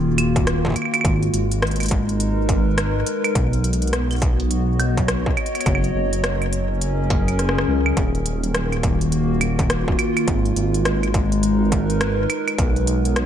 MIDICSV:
0, 0, Header, 1, 4, 480
1, 0, Start_track
1, 0, Tempo, 576923
1, 870, Time_signature, 4, 2, 24, 8
1, 11031, End_track
2, 0, Start_track
2, 0, Title_t, "Ambient pad"
2, 0, Program_c, 0, 92
2, 0, Note_on_c, 0, 51, 70
2, 0, Note_on_c, 0, 58, 89
2, 0, Note_on_c, 0, 65, 83
2, 0, Note_on_c, 0, 66, 88
2, 870, Note_off_c, 0, 51, 0
2, 870, Note_off_c, 0, 58, 0
2, 870, Note_on_c, 0, 56, 84
2, 1285, Note_on_c, 0, 63, 73
2, 1569, Note_on_c, 0, 70, 82
2, 1650, Note_off_c, 0, 65, 0
2, 1650, Note_off_c, 0, 66, 0
2, 1758, Note_on_c, 0, 71, 73
2, 2790, Note_off_c, 0, 56, 0
2, 2791, Note_on_c, 0, 59, 80
2, 3010, Note_on_c, 0, 66, 87
2, 3570, Note_off_c, 0, 63, 0
2, 3570, Note_off_c, 0, 70, 0
2, 3570, Note_off_c, 0, 71, 0
2, 3678, Note_on_c, 0, 73, 74
2, 3679, Note_on_c, 0, 75, 90
2, 4710, Note_on_c, 0, 54, 80
2, 4711, Note_off_c, 0, 59, 0
2, 5304, Note_on_c, 0, 61, 80
2, 5489, Note_off_c, 0, 66, 0
2, 5490, Note_off_c, 0, 73, 0
2, 5491, Note_off_c, 0, 75, 0
2, 5520, Note_on_c, 0, 70, 78
2, 5596, Note_on_c, 0, 68, 84
2, 6630, Note_off_c, 0, 54, 0
2, 6630, Note_on_c, 0, 51, 74
2, 6816, Note_on_c, 0, 58, 77
2, 7061, Note_on_c, 0, 66, 72
2, 7261, Note_off_c, 0, 68, 0
2, 7410, Note_off_c, 0, 61, 0
2, 7410, Note_off_c, 0, 70, 0
2, 7517, Note_on_c, 0, 65, 80
2, 8550, Note_off_c, 0, 51, 0
2, 8550, Note_off_c, 0, 58, 0
2, 8552, Note_on_c, 0, 56, 91
2, 9150, Note_on_c, 0, 63, 78
2, 9185, Note_off_c, 0, 65, 0
2, 9330, Note_off_c, 0, 66, 0
2, 9437, Note_on_c, 0, 70, 90
2, 9437, Note_on_c, 0, 71, 78
2, 10471, Note_off_c, 0, 56, 0
2, 10471, Note_on_c, 0, 59, 88
2, 10684, Note_on_c, 0, 73, 76
2, 10746, Note_on_c, 0, 66, 90
2, 11031, Note_off_c, 0, 59, 0
2, 11031, Note_off_c, 0, 63, 0
2, 11031, Note_off_c, 0, 66, 0
2, 11031, Note_off_c, 0, 70, 0
2, 11031, Note_off_c, 0, 71, 0
2, 11031, Note_off_c, 0, 73, 0
2, 11031, End_track
3, 0, Start_track
3, 0, Title_t, "Detuned saw bass"
3, 0, Program_c, 1, 39
3, 0, Note_on_c, 1, 27, 96
3, 606, Note_off_c, 1, 27, 0
3, 870, Note_on_c, 1, 32, 96
3, 1080, Note_off_c, 1, 32, 0
3, 1110, Note_on_c, 1, 32, 87
3, 2526, Note_off_c, 1, 32, 0
3, 2790, Note_on_c, 1, 35, 97
3, 4446, Note_off_c, 1, 35, 0
3, 4710, Note_on_c, 1, 30, 98
3, 4920, Note_off_c, 1, 30, 0
3, 4950, Note_on_c, 1, 30, 89
3, 6366, Note_off_c, 1, 30, 0
3, 6389, Note_on_c, 1, 37, 90
3, 6599, Note_off_c, 1, 37, 0
3, 6630, Note_on_c, 1, 27, 98
3, 8286, Note_off_c, 1, 27, 0
3, 8550, Note_on_c, 1, 32, 98
3, 8760, Note_off_c, 1, 32, 0
3, 8790, Note_on_c, 1, 32, 92
3, 10206, Note_off_c, 1, 32, 0
3, 10470, Note_on_c, 1, 35, 96
3, 11031, Note_off_c, 1, 35, 0
3, 11031, End_track
4, 0, Start_track
4, 0, Title_t, "Drums"
4, 151, Note_on_c, 9, 42, 79
4, 151, Note_on_c, 9, 75, 78
4, 234, Note_off_c, 9, 42, 0
4, 234, Note_off_c, 9, 75, 0
4, 299, Note_on_c, 9, 36, 100
4, 300, Note_on_c, 9, 42, 53
4, 382, Note_off_c, 9, 36, 0
4, 383, Note_off_c, 9, 42, 0
4, 391, Note_on_c, 9, 37, 115
4, 391, Note_on_c, 9, 42, 82
4, 474, Note_off_c, 9, 37, 0
4, 474, Note_off_c, 9, 42, 0
4, 539, Note_on_c, 9, 36, 100
4, 550, Note_off_c, 9, 36, 0
4, 550, Note_on_c, 9, 36, 66
4, 554, Note_off_c, 9, 36, 0
4, 554, Note_on_c, 9, 36, 81
4, 585, Note_off_c, 9, 36, 0
4, 585, Note_on_c, 9, 36, 53
4, 600, Note_off_c, 9, 36, 0
4, 600, Note_on_c, 9, 36, 44
4, 615, Note_off_c, 9, 36, 0
4, 615, Note_on_c, 9, 36, 38
4, 631, Note_on_c, 9, 42, 79
4, 631, Note_on_c, 9, 75, 36
4, 681, Note_off_c, 9, 75, 0
4, 681, Note_on_c, 9, 75, 43
4, 698, Note_off_c, 9, 36, 0
4, 711, Note_off_c, 9, 75, 0
4, 711, Note_on_c, 9, 75, 49
4, 715, Note_off_c, 9, 42, 0
4, 779, Note_off_c, 9, 75, 0
4, 779, Note_on_c, 9, 42, 53
4, 779, Note_on_c, 9, 75, 79
4, 791, Note_off_c, 9, 75, 0
4, 791, Note_on_c, 9, 75, 61
4, 841, Note_off_c, 9, 75, 0
4, 841, Note_on_c, 9, 75, 68
4, 863, Note_off_c, 9, 42, 0
4, 871, Note_on_c, 9, 36, 118
4, 871, Note_on_c, 9, 42, 80
4, 924, Note_off_c, 9, 75, 0
4, 954, Note_off_c, 9, 36, 0
4, 954, Note_off_c, 9, 42, 0
4, 1020, Note_on_c, 9, 42, 37
4, 1103, Note_off_c, 9, 42, 0
4, 1112, Note_on_c, 9, 42, 77
4, 1195, Note_off_c, 9, 42, 0
4, 1261, Note_on_c, 9, 42, 52
4, 1344, Note_off_c, 9, 42, 0
4, 1351, Note_on_c, 9, 37, 113
4, 1351, Note_on_c, 9, 42, 37
4, 1389, Note_off_c, 9, 42, 0
4, 1389, Note_on_c, 9, 42, 40
4, 1425, Note_off_c, 9, 42, 0
4, 1425, Note_on_c, 9, 42, 45
4, 1435, Note_off_c, 9, 37, 0
4, 1462, Note_off_c, 9, 42, 0
4, 1462, Note_on_c, 9, 42, 50
4, 1500, Note_off_c, 9, 42, 0
4, 1500, Note_on_c, 9, 42, 59
4, 1500, Note_on_c, 9, 75, 36
4, 1522, Note_off_c, 9, 42, 0
4, 1522, Note_on_c, 9, 42, 61
4, 1546, Note_off_c, 9, 42, 0
4, 1546, Note_on_c, 9, 42, 65
4, 1568, Note_off_c, 9, 42, 0
4, 1568, Note_on_c, 9, 42, 70
4, 1583, Note_off_c, 9, 75, 0
4, 1590, Note_off_c, 9, 42, 0
4, 1590, Note_on_c, 9, 36, 120
4, 1590, Note_on_c, 9, 42, 79
4, 1673, Note_off_c, 9, 42, 0
4, 1674, Note_off_c, 9, 36, 0
4, 1739, Note_on_c, 9, 42, 52
4, 1822, Note_off_c, 9, 42, 0
4, 1831, Note_on_c, 9, 42, 78
4, 1914, Note_off_c, 9, 42, 0
4, 2070, Note_on_c, 9, 36, 105
4, 2070, Note_on_c, 9, 42, 78
4, 2153, Note_off_c, 9, 42, 0
4, 2154, Note_off_c, 9, 36, 0
4, 2310, Note_on_c, 9, 37, 122
4, 2310, Note_on_c, 9, 42, 83
4, 2394, Note_off_c, 9, 37, 0
4, 2394, Note_off_c, 9, 42, 0
4, 2550, Note_on_c, 9, 42, 81
4, 2633, Note_off_c, 9, 42, 0
4, 2699, Note_on_c, 9, 42, 52
4, 2699, Note_on_c, 9, 75, 76
4, 2782, Note_off_c, 9, 42, 0
4, 2782, Note_off_c, 9, 75, 0
4, 2790, Note_on_c, 9, 36, 117
4, 2791, Note_on_c, 9, 42, 80
4, 2873, Note_off_c, 9, 36, 0
4, 2874, Note_off_c, 9, 42, 0
4, 2939, Note_on_c, 9, 42, 37
4, 3022, Note_off_c, 9, 42, 0
4, 3030, Note_on_c, 9, 42, 74
4, 3104, Note_off_c, 9, 42, 0
4, 3104, Note_on_c, 9, 42, 60
4, 3178, Note_off_c, 9, 42, 0
4, 3178, Note_on_c, 9, 42, 52
4, 3223, Note_off_c, 9, 42, 0
4, 3223, Note_on_c, 9, 42, 40
4, 3269, Note_off_c, 9, 42, 0
4, 3269, Note_on_c, 9, 37, 117
4, 3269, Note_on_c, 9, 42, 78
4, 3353, Note_off_c, 9, 37, 0
4, 3353, Note_off_c, 9, 42, 0
4, 3417, Note_on_c, 9, 42, 35
4, 3417, Note_on_c, 9, 75, 34
4, 3430, Note_off_c, 9, 42, 0
4, 3430, Note_on_c, 9, 42, 24
4, 3433, Note_off_c, 9, 42, 0
4, 3433, Note_on_c, 9, 42, 29
4, 3464, Note_off_c, 9, 42, 0
4, 3464, Note_on_c, 9, 42, 20
4, 3479, Note_off_c, 9, 42, 0
4, 3479, Note_on_c, 9, 42, 16
4, 3494, Note_off_c, 9, 42, 0
4, 3494, Note_on_c, 9, 42, 13
4, 3501, Note_off_c, 9, 75, 0
4, 3509, Note_off_c, 9, 42, 0
4, 3509, Note_on_c, 9, 42, 80
4, 3510, Note_on_c, 9, 36, 121
4, 3592, Note_off_c, 9, 42, 0
4, 3593, Note_off_c, 9, 36, 0
4, 3659, Note_on_c, 9, 42, 52
4, 3742, Note_off_c, 9, 42, 0
4, 3749, Note_on_c, 9, 42, 75
4, 3833, Note_off_c, 9, 42, 0
4, 3990, Note_on_c, 9, 42, 77
4, 3990, Note_on_c, 9, 75, 75
4, 4073, Note_off_c, 9, 42, 0
4, 4073, Note_off_c, 9, 75, 0
4, 4139, Note_on_c, 9, 36, 100
4, 4139, Note_on_c, 9, 42, 52
4, 4222, Note_off_c, 9, 36, 0
4, 4222, Note_off_c, 9, 42, 0
4, 4229, Note_on_c, 9, 37, 120
4, 4229, Note_on_c, 9, 42, 80
4, 4312, Note_off_c, 9, 37, 0
4, 4312, Note_off_c, 9, 42, 0
4, 4379, Note_on_c, 9, 36, 111
4, 4462, Note_off_c, 9, 36, 0
4, 4469, Note_on_c, 9, 42, 35
4, 4469, Note_on_c, 9, 75, 74
4, 4543, Note_off_c, 9, 42, 0
4, 4543, Note_on_c, 9, 42, 44
4, 4552, Note_off_c, 9, 75, 0
4, 4618, Note_off_c, 9, 42, 0
4, 4618, Note_on_c, 9, 42, 56
4, 4618, Note_on_c, 9, 75, 33
4, 4664, Note_off_c, 9, 42, 0
4, 4664, Note_off_c, 9, 75, 0
4, 4664, Note_on_c, 9, 42, 66
4, 4664, Note_on_c, 9, 75, 42
4, 4710, Note_off_c, 9, 42, 0
4, 4710, Note_off_c, 9, 75, 0
4, 4710, Note_on_c, 9, 36, 117
4, 4710, Note_on_c, 9, 42, 77
4, 4710, Note_on_c, 9, 75, 50
4, 4784, Note_off_c, 9, 75, 0
4, 4784, Note_on_c, 9, 75, 59
4, 4793, Note_off_c, 9, 36, 0
4, 4793, Note_off_c, 9, 42, 0
4, 4859, Note_on_c, 9, 42, 34
4, 4867, Note_off_c, 9, 75, 0
4, 4942, Note_off_c, 9, 42, 0
4, 5099, Note_on_c, 9, 42, 51
4, 5182, Note_off_c, 9, 42, 0
4, 5189, Note_on_c, 9, 37, 117
4, 5189, Note_on_c, 9, 42, 74
4, 5272, Note_off_c, 9, 37, 0
4, 5272, Note_off_c, 9, 42, 0
4, 5339, Note_on_c, 9, 42, 36
4, 5339, Note_on_c, 9, 75, 35
4, 5422, Note_off_c, 9, 42, 0
4, 5422, Note_off_c, 9, 75, 0
4, 5430, Note_on_c, 9, 42, 76
4, 5513, Note_off_c, 9, 42, 0
4, 5670, Note_on_c, 9, 42, 74
4, 5753, Note_off_c, 9, 42, 0
4, 5910, Note_on_c, 9, 36, 107
4, 5910, Note_on_c, 9, 42, 76
4, 5993, Note_off_c, 9, 36, 0
4, 5993, Note_off_c, 9, 42, 0
4, 6059, Note_on_c, 9, 42, 50
4, 6059, Note_on_c, 9, 75, 33
4, 6142, Note_off_c, 9, 42, 0
4, 6142, Note_off_c, 9, 75, 0
4, 6149, Note_on_c, 9, 37, 52
4, 6149, Note_on_c, 9, 42, 75
4, 6230, Note_off_c, 9, 37, 0
4, 6230, Note_on_c, 9, 37, 72
4, 6232, Note_off_c, 9, 42, 0
4, 6310, Note_off_c, 9, 37, 0
4, 6310, Note_on_c, 9, 37, 94
4, 6393, Note_off_c, 9, 37, 0
4, 6539, Note_on_c, 9, 75, 70
4, 6623, Note_off_c, 9, 75, 0
4, 6630, Note_on_c, 9, 36, 110
4, 6630, Note_on_c, 9, 42, 71
4, 6713, Note_off_c, 9, 36, 0
4, 6713, Note_off_c, 9, 42, 0
4, 6779, Note_on_c, 9, 42, 33
4, 6863, Note_off_c, 9, 42, 0
4, 6870, Note_on_c, 9, 42, 74
4, 6953, Note_off_c, 9, 42, 0
4, 7018, Note_on_c, 9, 42, 49
4, 7101, Note_off_c, 9, 42, 0
4, 7109, Note_on_c, 9, 37, 115
4, 7109, Note_on_c, 9, 42, 72
4, 7193, Note_off_c, 9, 37, 0
4, 7193, Note_off_c, 9, 42, 0
4, 7259, Note_on_c, 9, 42, 35
4, 7259, Note_on_c, 9, 75, 35
4, 7342, Note_off_c, 9, 42, 0
4, 7342, Note_off_c, 9, 75, 0
4, 7350, Note_on_c, 9, 36, 118
4, 7350, Note_on_c, 9, 42, 72
4, 7433, Note_off_c, 9, 36, 0
4, 7433, Note_off_c, 9, 42, 0
4, 7498, Note_on_c, 9, 42, 49
4, 7581, Note_off_c, 9, 42, 0
4, 7589, Note_on_c, 9, 42, 71
4, 7672, Note_off_c, 9, 42, 0
4, 7829, Note_on_c, 9, 42, 74
4, 7829, Note_on_c, 9, 75, 74
4, 7912, Note_off_c, 9, 42, 0
4, 7912, Note_off_c, 9, 75, 0
4, 7979, Note_on_c, 9, 36, 98
4, 7979, Note_on_c, 9, 42, 48
4, 8062, Note_off_c, 9, 36, 0
4, 8062, Note_off_c, 9, 42, 0
4, 8069, Note_on_c, 9, 37, 119
4, 8069, Note_on_c, 9, 42, 74
4, 8153, Note_off_c, 9, 37, 0
4, 8153, Note_off_c, 9, 42, 0
4, 8219, Note_on_c, 9, 36, 104
4, 8302, Note_off_c, 9, 36, 0
4, 8310, Note_on_c, 9, 42, 73
4, 8310, Note_on_c, 9, 75, 74
4, 8393, Note_off_c, 9, 42, 0
4, 8393, Note_off_c, 9, 75, 0
4, 8459, Note_on_c, 9, 42, 47
4, 8459, Note_on_c, 9, 75, 73
4, 8542, Note_off_c, 9, 42, 0
4, 8542, Note_off_c, 9, 75, 0
4, 8550, Note_on_c, 9, 36, 109
4, 8550, Note_on_c, 9, 42, 72
4, 8633, Note_off_c, 9, 36, 0
4, 8633, Note_off_c, 9, 42, 0
4, 8699, Note_on_c, 9, 42, 33
4, 8782, Note_off_c, 9, 42, 0
4, 8790, Note_on_c, 9, 42, 71
4, 8873, Note_off_c, 9, 42, 0
4, 8939, Note_on_c, 9, 42, 47
4, 9022, Note_off_c, 9, 42, 0
4, 9030, Note_on_c, 9, 37, 109
4, 9030, Note_on_c, 9, 42, 72
4, 9113, Note_off_c, 9, 37, 0
4, 9113, Note_off_c, 9, 42, 0
4, 9179, Note_on_c, 9, 42, 35
4, 9179, Note_on_c, 9, 75, 36
4, 9262, Note_off_c, 9, 42, 0
4, 9262, Note_off_c, 9, 75, 0
4, 9270, Note_on_c, 9, 36, 115
4, 9270, Note_on_c, 9, 42, 73
4, 9353, Note_off_c, 9, 42, 0
4, 9354, Note_off_c, 9, 36, 0
4, 9419, Note_on_c, 9, 42, 48
4, 9502, Note_off_c, 9, 42, 0
4, 9510, Note_on_c, 9, 42, 73
4, 9593, Note_off_c, 9, 42, 0
4, 9751, Note_on_c, 9, 36, 97
4, 9751, Note_on_c, 9, 42, 74
4, 9834, Note_off_c, 9, 36, 0
4, 9834, Note_off_c, 9, 42, 0
4, 9899, Note_on_c, 9, 42, 48
4, 9982, Note_off_c, 9, 42, 0
4, 9990, Note_on_c, 9, 37, 112
4, 9990, Note_on_c, 9, 42, 72
4, 10073, Note_off_c, 9, 37, 0
4, 10073, Note_off_c, 9, 42, 0
4, 10231, Note_on_c, 9, 42, 75
4, 10231, Note_on_c, 9, 75, 74
4, 10314, Note_off_c, 9, 42, 0
4, 10314, Note_off_c, 9, 75, 0
4, 10380, Note_on_c, 9, 42, 49
4, 10380, Note_on_c, 9, 75, 76
4, 10463, Note_off_c, 9, 42, 0
4, 10463, Note_off_c, 9, 75, 0
4, 10470, Note_on_c, 9, 42, 74
4, 10471, Note_on_c, 9, 36, 107
4, 10554, Note_off_c, 9, 36, 0
4, 10554, Note_off_c, 9, 42, 0
4, 10619, Note_on_c, 9, 42, 35
4, 10703, Note_off_c, 9, 42, 0
4, 10711, Note_on_c, 9, 42, 75
4, 10794, Note_off_c, 9, 42, 0
4, 10860, Note_on_c, 9, 42, 51
4, 10943, Note_off_c, 9, 42, 0
4, 10951, Note_on_c, 9, 37, 108
4, 10951, Note_on_c, 9, 42, 74
4, 11031, Note_off_c, 9, 37, 0
4, 11031, Note_off_c, 9, 42, 0
4, 11031, End_track
0, 0, End_of_file